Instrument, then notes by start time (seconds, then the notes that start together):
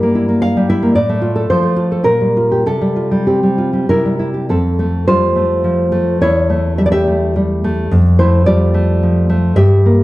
nylon-string guitar
Already playing: G2 G3 E4 A#4
0.03 A#3
0.15 E4
0.29 A#3
0.42 F5
0.57 G3
0.70 E4 E5
0.83 A#3
0.95 A2 D5
1.09 A3
1.22 F4
1.36 A4
1.50 F3 C5
1.63 A3
1.76 F4
1.92 A4
2.04 A#2 A#4
2.21 G3
2.37 F4
2.51 G4
2.66 C3 A4
2.81 G3
2.96 F4
3.11 G3
3.27 C4 G4
3.43 G3
3.58 F4
3.73 G3
3.89 C3 E4 A#4
4.05 G3
4.19 E4
4.34 G4
4.49 F2 C4 A4
4.79 A3
5.08 G3 F4 C5
5.36 A3
5.64 F3
5.92 A3
6.21 E2 E4 C#5
6.50 A3
6.78 G3 E5
6.86 D5
6.92 G4 E5
7.07 A3
7.36 G3
7.64 A3
7.91 F2
8.19 A3 E4 C5
8.46 G3 F4 D5
8.74 A3
9.03 F3
9.30 A3
9.56 G2 G4 E5
9.86 A#3